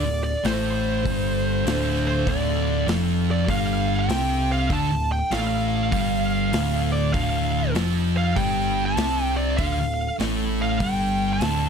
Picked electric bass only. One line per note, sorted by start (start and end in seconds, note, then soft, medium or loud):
0.04 0.32 D1 medium
0.44 1.01 A1 medium
1.06 1.63 G1 medium
1.65 2.23 D1 medium
2.27 2.84 D1 medium
2.87 3.45 F1 loud
3.48 4.06 G1 medium
4.09 4.67 C2 medium
4.70 4.89 D2 loud
4.90 5.19 D1 medium
5.31 5.88 A1 loud
5.92 6.49 G1 medium
6.53 7.11 D1 medium
7.14 7.71 D1 medium
7.76 8.33 F1 medium
8.36 8.93 G1 loud
8.97 9.54 C2 loud
9.58 9.77 D2 loud
9.77 10.06 D1 medium
10.20 10.76 A1 medium
10.81 11.37 G1 loud
11.41 11.69 D1 loud